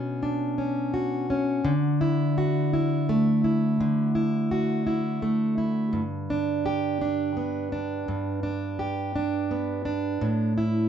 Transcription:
Already playing: B2 C#4 D4 F#4
0.23 D4
0.58 C#4
0.94 F#4
1.30 C#4
1.65 D3
2.01 E4
2.38 F#4
2.73 E4
3.09 A3
3.44 E4
3.80 D3
4.15 E4
4.51 F#4
4.87 E4
5.22 A3
5.58 E4
5.93 G2
6.30 D4
6.66 G4
7.01 D4
7.37 B3
7.72 D4
8.08 G2
8.43 D4
8.79 G4
9.16 D4
9.51 B3
9.85 D4
10.21 A2
10.58 E4

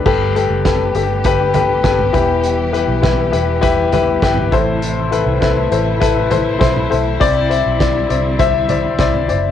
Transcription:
0.05 G1 D3 G3 A3 B3 G4 A4 B4, kick, crash
0.35 G4 A4 B4, closed hi-hat
0.50 F#1
0.64 G4 A4 B4, kick, snare, closed hi-hat
0.95 G1 G4 A4 B4, closed hi-hat
1.24 G4 A4 B4, kick, closed hi-hat
1.54 G4 A4 B4, closed hi-hat, floor tom
1.84 G1 G4 A4 B4, kick, snare, closed hi-hat
1.99 floor tom
2.13 E1 E3 G3 E4 G4 B4, kick, closed hi-hat
2.43 closed hi-hat
2.72 E4 G4 B4, closed hi-hat
2.88 B1
3.02 E4 G4 B4, kick, snare, closed hi-hat
3.32 E1 E4 G4 B4, closed hi-hat
3.61 E4 G4 B4, kick, closed hi-hat
3.92 E4 G4 B4, closed hi-hat, floor tom
4.22 G1 E4 G4 B4 G5, kick, snare, closed hi-hat
4.37 floor tom
4.51 A1 A2 C3 A3 E4 A4 C5 A5, kick, closed hi-hat
4.82 closed hi-hat
5.11 E4 A4 B4, closed hi-hat
5.26 C2
5.41 E4 A4 B4, kick, snare, closed hi-hat
5.71 A1 E4 A4 C5, closed hi-hat
6.00 E4 A4 B4, kick, closed hi-hat
6.30 E4 A4 C5, closed hi-hat, floor tom
6.59 B1 E4 A4 C5, kick, snare, closed hi-hat
6.76 floor tom
6.90 B1 E4 A4 C5, closed hi-hat
7.20 C2 D3 G3 C4 E4 C5 D5, kick, closed hi-hat
7.49 E4 C5 E5, closed hi-hat
7.66 B1
7.79 E4 C5 D5, kick, snare, closed hi-hat
8.09 C2 E4 C5 D5, closed hi-hat
8.39 E4 C5 E5, kick, closed hi-hat
8.69 E4 C5 D5, closed hi-hat, floor tom
8.98 C2 E4 C5 D5, kick, snare, closed hi-hat
9.14 floor tom
9.28 F#1 E4 C5 D5, closed hi-hat

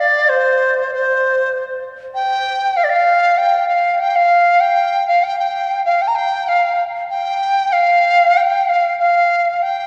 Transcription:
0.00 D5
0.29 C5
0.93 C5
2.15 G5
2.77 F5
2.84 D5
2.90 F5
3.38 G5
3.68 F5
4.00 G5
4.16 F5
4.60 G5
5.07 F5
5.24 G5
5.39 G5
5.85 F5
6.02 G5
6.08 A#5
6.15 G5
6.48 F5
7.10 G5
7.72 F5
8.37 G5
8.69 F5
8.99 F5
9.62 G5

